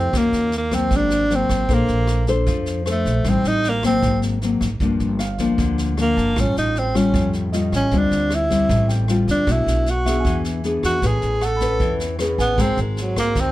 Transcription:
Already playing: F2 C3 A3 C4 E4 G4
0.13 D#2 D#3 A#3 C#4 F#4, kick, cross-stick, snare
0.18 A#3
0.33 D#2, snare
0.52 snare
0.58 A#3
0.71 F#3 A#3 C4, kick, cross-stick, snare
0.91 G#1 G#2, kick, snare
0.96 D4
1.10 snare
1.30 F#3 A#3 C4, snare
1.35 C4
1.49 G#1, kick, cross-stick, snare
1.69 A#1 A#3 D4 A4 C5, kick, snare
1.74 A#3
1.88 A#1, snare
2.07 cross-stick, snare
2.27 D4 A4 C5, kick, snare
2.46 F2 F3, kick, snare
2.66 snare
2.86 D4 A4 C5, cross-stick, snare
2.91 A3
3.05 A#1, kick, snare
3.24 A1 A2 G3 C4 D#4, kick, cross-stick, snare
3.29 C4
3.44 A1 D#4, snare
3.64 snare
3.69 A#3
3.83 F#3 A#3 C4, kick, cross-stick, snare
4.02 G#1 G#2, kick, snare
4.22 snare
4.42 F#3 A#3 C4, snare
4.61 G#1, kick, cross-stick, snare
4.80 G1 G2 F3 A#3 D4, kick, snare
5.00 G1, snare
5.19 F5, cross-stick, snare
5.38 F3 A#3 D4, kick, snare
5.58 D2 D3, kick, snare
5.78 snare
5.97 F3 A#3 D4, cross-stick, snare
6.01 A#3
6.17 G1 A5, kick, snare
6.36 A1 A2 G3 C#4 F4, kick, cross-stick, snare
6.41 C#4
6.56 A1 D#4, snare
6.75 C4, snare
6.95 G3 C#4 F4, kick, cross-stick, snare
7.14 F2 A2, kick, snare
7.33 snare
7.52 G3 C#4 F4 D#5, snare
7.72 A1 C#4, kick, cross-stick, snare
7.91 D2 D3 G3 C4 F4, kick, snare
7.97 D4
8.11 D2, snare
8.30 cross-stick, snare
8.35 E4
8.50 G3 C4, kick, snare
8.69 A1 A2, kick, snare
8.89 G5, snare
9.08 G3 C4 F4, cross-stick, snare
9.28 D2 D4, kick, snare
9.47 B1 B2 A3 D4 F#4, kick, cross-stick, snare
9.52 E4
9.66 B1, snare
9.86 snare
9.90 F#4
10.06 B3 D4 G#4 E5, kick, cross-stick, snare
10.20 G#5
10.25 E2 E3, kick, snare
10.44 snare
10.64 B3 D4 G#4, snare
10.83 E2 F#4, kick, cross-stick, snare
11.02 A1 A3 C#4 G#4 B4, kick, snare
11.06 G#4
11.22 A1, snare
11.41 F#5, cross-stick, snare
11.46 A4
11.57 B5, kick, snare
11.61 C#4 B4
11.80 E2 E3, kick, snare
12.00 snare
12.19 C#4 G#4 B4, cross-stick, snare
12.38 A1 B3 G#5, kick, snare
12.58 G#1 G#3 C4 F#4 A#4, kick, cross-stick, snare
12.62 C4
12.77 G#1, snare
12.82 D#3
12.97 snare
13.01 F#3
13.16 A#3 C4 F#4 A#4, kick, cross-stick, snare
13.35 D#2 D#3, kick, snare
13.41 C4

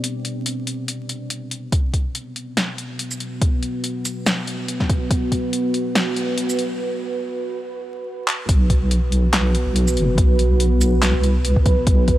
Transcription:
Already playing: B3 C4 G4 D5
0.04 closed hi-hat
0.25 closed hi-hat
0.46 closed hi-hat
0.67 closed hi-hat
0.88 closed hi-hat
1.09 closed hi-hat
1.30 closed hi-hat
1.51 closed hi-hat
1.72 B3 F#4 B4, kick, closed hi-hat
1.94 kick, closed hi-hat
2.15 closed hi-hat
2.36 closed hi-hat
2.57 snare, closed hi-hat
2.78 closed hi-hat
2.99 closed hi-hat
3.11 shaker
3.20 closed hi-hat
3.42 kick, closed hi-hat
3.63 closed hi-hat
3.84 closed hi-hat
4.05 closed hi-hat, shaker
4.26 snare, closed hi-hat, shaker
4.47 closed hi-hat
4.68 closed hi-hat
4.80 kick, snare
4.90 kick, closed hi-hat
5.11 kick, closed hi-hat
5.32 kick, closed hi-hat
5.53 closed hi-hat
5.74 closed hi-hat
5.95 snare, closed hi-hat
6.16 closed hi-hat
6.38 closed hi-hat
6.49 shaker
6.59 closed hi-hat
8.28 clap
8.49 B1 B3 F#4 B4, kick, closed hi-hat
8.70 kick, closed hi-hat
8.91 closed hi-hat
9.12 closed hi-hat
9.33 snare, clap, closed hi-hat
9.55 closed hi-hat
9.66 B1
9.76 closed hi-hat
9.88 shaker
9.97 F#1, closed hi-hat
10.18 B1, kick, closed hi-hat
10.39 closed hi-hat
10.60 closed hi-hat
10.81 closed hi-hat, shaker
11.02 snare, clap, closed hi-hat, shaker
11.14 C2
11.23 closed hi-hat
11.45 closed hi-hat
11.56 B1, kick
11.66 kick, closed hi-hat
11.87 B1 E4, kick, closed hi-hat
12.08 kick, closed hi-hat

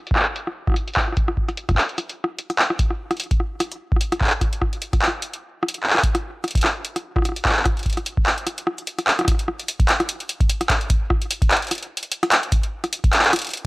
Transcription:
0.07 closed hi-hat
0.11 kick
0.16 cross-stick, clap
0.19 clap
0.22 clap
0.36 closed hi-hat
0.47 cross-stick
0.67 kick, cross-stick
0.70 cross-stick
0.72 cross-stick
0.74 cross-stick, closed hi-hat
0.88 closed hi-hat
0.94 kick, cross-stick, clap, closed hi-hat
1.00 cross-stick, closed hi-hat
1.08 cross-stick
1.12 cross-stick
1.17 kick, closed hi-hat
1.28 cross-stick
1.37 kick
1.49 cross-stick, closed hi-hat
1.57 closed hi-hat
1.69 kick, cross-stick, closed hi-hat
1.71 kick
1.75 kick, clap
1.89 closed hi-hat
1.98 cross-stick, closed hi-hat
2.09 closed hi-hat
2.24 cross-stick
2.39 closed hi-hat
2.50 cross-stick, closed hi-hat
2.59 clap
2.70 cross-stick
2.79 kick, closed hi-hat
2.90 cross-stick
3.11 cross-stick, closed hi-hat
3.17 closed hi-hat
3.20 closed hi-hat
3.23 closed hi-hat
3.31 kick, closed hi-hat
3.40 cross-stick
3.60 cross-stick, closed hi-hat
3.72 closed hi-hat
3.92 kick
3.96 cross-stick
4.01 closed hi-hat
4.12 cross-stick, closed hi-hat
4.21 kick, clap
4.24 clap
4.27 clap
4.30 clap
4.41 kick, cross-stick, closed hi-hat
4.53 closed hi-hat
4.62 kick, cross-stick
4.73 closed hi-hat
4.82 closed hi-hat
4.93 kick, cross-stick, closed hi-hat
5.02 clap
5.08 cross-stick
5.22 closed hi-hat
5.34 closed hi-hat
5.63 cross-stick
5.68 closed hi-hat
5.74 closed hi-hat
5.83 clap
5.90 clap
5.95 cross-stick, clap
6.03 kick, closed hi-hat
6.15 cross-stick, closed hi-hat
6.44 cross-stick, closed hi-hat
6.48 closed hi-hat
6.51 closed hi-hat
6.55 kick, closed hi-hat
6.58 closed hi-hat
6.61 cross-stick, clap, closed hi-hat
6.85 closed hi-hat
6.96 cross-stick, closed hi-hat
7.16 kick, cross-stick
7.18 cross-stick
7.22 cross-stick
7.25 cross-stick, closed hi-hat
7.29 cross-stick
7.32 cross-stick
7.36 closed hi-hat
7.45 kick, cross-stick, clap
7.49 cross-stick, clap
7.52 cross-stick, clap
7.57 clap
7.59 clap
7.63 kick, cross-stick, clap, closed hi-hat
7.77 closed hi-hat
7.79 closed hi-hat
7.83 kick, closed hi-hat
7.86 closed hi-hat
7.90 closed hi-hat
7.93 closed hi-hat
7.97 cross-stick, closed hi-hat
8.06 closed hi-hat
8.17 kick
8.26 clap
8.38 closed hi-hat
8.47 cross-stick, closed hi-hat
8.58 closed hi-hat
8.67 cross-stick
8.78 closed hi-hat
8.87 closed hi-hat
8.99 cross-stick, closed hi-hat
9.07 clap
9.19 cross-stick, closed hi-hat
9.21 cross-stick
9.25 kick, cross-stick
9.28 cross-stick, closed hi-hat
9.32 cross-stick
9.35 cross-stick
9.39 closed hi-hat
9.48 cross-stick
9.60 closed hi-hat
9.68 closed hi-hat
9.80 kick, closed hi-hat
9.89 clap, closed hi-hat
10.00 cross-stick, closed hi-hat
10.09 closed hi-hat
10.20 closed hi-hat
10.29 closed hi-hat
10.40 kick, closed hi-hat
10.49 closed hi-hat
10.61 cross-stick, closed hi-hat
10.70 kick, clap, closed hi-hat
10.81 closed hi-hat
10.90 kick, closed hi-hat
11.10 kick, cross-stick
11.22 closed hi-hat
11.31 closed hi-hat
11.42 kick, closed hi-hat
11.51 clap, closed hi-hat
11.57 closed hi-hat
11.62 closed hi-hat
11.65 closed hi-hat
11.67 closed hi-hat
11.71 cross-stick, closed hi-hat
11.75 closed hi-hat
11.78 closed hi-hat
11.83 closed hi-hat
11.97 closed hi-hat
12.03 closed hi-hat
12.12 closed hi-hat
12.23 cross-stick, closed hi-hat
12.32 clap, closed hi-hat
12.43 closed hi-hat
12.52 kick, closed hi-hat
12.63 closed hi-hat
12.84 cross-stick, closed hi-hat
12.93 closed hi-hat
13.04 kick, closed hi-hat
13.13 clap, closed hi-hat
13.19 clap
13.24 clap, closed hi-hat
13.29 clap
13.33 cross-stick, closed hi-hat
13.36 closed hi-hat
13.39 closed hi-hat
13.42 closed hi-hat
13.45 closed hi-hat
13.47 closed hi-hat
13.49 closed hi-hat
13.51 closed hi-hat
13.54 closed hi-hat
13.57 closed hi-hat

